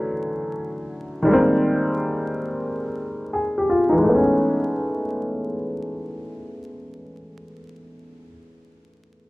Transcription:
Already playing: D3 E3 F#3 A3 C#4
1.22 D#3 G3
1.28 G#3 A#3
1.33 C4
3.33 G#4
3.58 G4
3.70 F4
3.89 E3 D#4
3.98 G#3
4.04 A3
4.09 B3
4.15 C#4

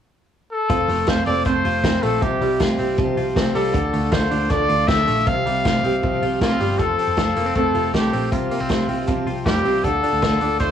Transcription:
0.52 A4
0.69 F1 F3 C4 F4 A4, kick, closed hi-hat
0.88 F1 A3 C4 F4 A4, open hi-hat
1.07 F1 F3 C4 F4 A4 C5, kick, snare, closed hi-hat
1.26 F1 C4 F4 A4 D5, open hi-hat
1.45 F1 F3 A3 C4 F4 A4 C5, kick, closed hi-hat
1.65 F1 C4 F4 A4, open hi-hat
1.84 F1 F3 C4 F4 A4, kick, snare, closed hi-hat
2.03 A#1 A3 C4 F4 A4, open hi-hat
2.22 C2 C3 F3 C4 F4 G4, kick, closed hi-hat
2.41 C2 G3 C4 F4 G4, open hi-hat
2.59 C2 F3 C4 F4 G4, kick, snare, closed hi-hat
2.78 C2 C4 F4 G4, open hi-hat
2.97 C2 C3 F3 C4 F4 G4, kick, closed hi-hat
3.17 C2 C4 F4 G4, open hi-hat
3.36 C2 F3 C4 F4 G4, kick, snare, closed hi-hat
3.55 C2 G3 C4 F4 G4 A4, open hi-hat
3.74 D2 D3 F3 D4 F4 A4, kick, closed hi-hat
3.93 D2 A3 D4 F4 A4, open hi-hat
4.12 D2 F3 D4 F4 A4 C5, kick, snare, closed hi-hat
4.31 D2 D4 F4 A4, open hi-hat
4.50 D2 D3 F3 A3 D4 F4 A4 D5, kick, closed hi-hat
4.69 D2 D4 F4 A4, open hi-hat
4.88 D2 F3 C4 D4 F4 A4 E5, kick, snare, closed hi-hat
4.98 D4
5.07 A#1 A3 D4 F4 A4, open hi-hat
5.26 C2 C3 F3 C4 F4 G4 F5, kick, closed hi-hat
5.46 C2 G3 C4 F4 G4, open hi-hat
5.65 C2 F3 C4 F4 G4, kick, snare, closed hi-hat
5.84 C2 C4 F4 G4, open hi-hat
6.03 C2 C3 F3 C4 F4 G4, kick, closed hi-hat
6.22 C2 C4 F4 G4, open hi-hat
6.41 C2 F3 A#3 C4 F4 G4, kick, snare, closed hi-hat
6.51 C4
6.59 G1 G3 C4 F4 G4, open hi-hat
6.79 F1 F3 C4 F4 A4, kick, closed hi-hat
6.98 C4 F4 A4, open hi-hat
7.08 F1
7.17 F1 F3 C4 F4 A4, kick, snare, closed hi-hat
7.36 F1 A#3 C4 F4 A4, open hi-hat
7.46 C4
7.55 F1 F3 A3 C4 F4 A4, kick, closed hi-hat
7.74 F1 C4 F4 A4, open hi-hat
7.93 C2 F3 A3 C4 F4 G4 A4, kick, snare, closed hi-hat
8.12 A#1 C4 F4 A4, open hi-hat
8.31 C2 C3 F3 C4 F4 G4, kick, closed hi-hat
8.50 A#3 C4 F4 G4, open hi-hat
8.60 C2 C4
8.69 C2 F3 C4 F4 G4, kick, snare, closed hi-hat
8.88 C2 C4 F4 G4, open hi-hat
9.07 C2 C3 F3 C4 F4 G4, kick, closed hi-hat
9.27 C2 C4 F4 G4, open hi-hat
9.46 F2 F3 G3 C4 F4 G4, kick, snare, closed hi-hat
9.65 C2 C4 F4 G4, open hi-hat
9.84 D2 D3 F3 D4 F4 A4, kick, closed hi-hat
10.03 D4 F4 A4, open hi-hat
10.13 D2
10.22 D2 F3 D4 F4 A4, kick, snare, closed hi-hat
10.41 D2 D4 F4 A4, open hi-hat
10.60 D2 D3 F3 A3 D4 F4 A4 C5, kick, closed hi-hat

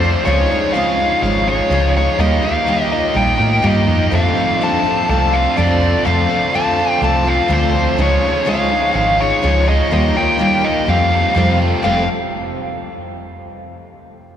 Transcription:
Already playing: F2 C3 D4 F4 A4 C5
0.00 F3 A3 C4 F4
0.25 C#2 C#3 F3 G#3 C#4 D#4 F4 G#4 C#5
0.49 G#3 C#4 D#4 F4
0.73 C#3 F3 G#3 C#4 D#4 F4 F5
0.98 G#3 D#4 F4
1.22 G#1 F3 G#3 D#4 F4 F5
1.46 G#3 C#4 D#4 F4 C#5
1.70 C#2 C#3 F3 G#3 C#4 D#4 F4
1.94 G#3 C#4 D#4 F4 C#5
2.18 D#2 D#3 G3 A#3 D#4 F4 G4 A#4 D#5
2.42 A#3 D#4 F4 G4 F5
2.67 D#3 G3 A#3 D#4 F4 G4
2.90 A#3 D#4 F4 D#5
3.14 A#1 G3 A#3 D#4 F4 G5
3.37 A2 A#3 D#4 F4 G4
3.62 G2 D#3 G3 A#3 D#4 F4 G4
3.66 D#5
3.86 F2 A#3 D#4 F4 G4
4.11 F2 C3 D3 F3 A3 C4 D4 F4 A4 C5 F5
4.35 F3 A3 C4 F4
4.61 F2 D3 F3 A3 C4 F4 A5
4.84 F3 A3 C4 F4
5.08 C2 F3 A3 C4 F4 A5
5.33 F3 A3 C4 F4 F5
5.57 F2 C3 D3 F3 A3 C4 F4 D5
5.81 F3 A3 C4 F4
6.05 F2 C3 D3 F3 A3 C4 F4 F5
6.29 F3 A3 C4 F4
6.54 F2 D3 F3 A3 C4 F4 A5
6.77 F3 A3 C4 F4
7.01 C2 F3 A3 C4 F4 A5
7.25 F3 A3 C4 F4 F5
7.48 D2 F2 C3 D3 F3 A3 C4 F4
7.52 C5
7.73 F3 A3 C4 F4
7.97 C#2 C#3 F3 G#3 C#4 D#4 F4 G#4 C#5
8.02 C#5
8.22 G#3 C#4 D#4 F4
8.45 C#3 F3 G#3 C#4 D#4 F4
8.49 F5
8.69 G#3 D#4 F4
8.93 G#1 F3 G#3 D#4 F4 F5
9.18 G#3 C#4 D#4 F4 C#5
9.42 C#2 C#3 F3 G#3 C#4 D#4 F4
9.66 G#3 C#4 D#4 F4 D#5
9.90 D#2 D#3 G3 A#3 D#4 F4 G4 A#4 D#5
10.15 A#3 D#4 F4 G4 G5
10.38 D#3 G3 A#3 D#4 F4
10.42 G4
10.62 A#3 D#4 F4 D#5
10.86 F2 C3 F3 G3 A3 C4 F4 G4 A4 F5
11.10 G3 A3 C4 F4
11.15 F3
11.35 F2 C3 F3 G3 A3 C4 F4
11.59 F3 G3 A3 C4 F4
11.83 F1 F2 C3 F3 G3 A3 C4 F4 G4 A4 F5

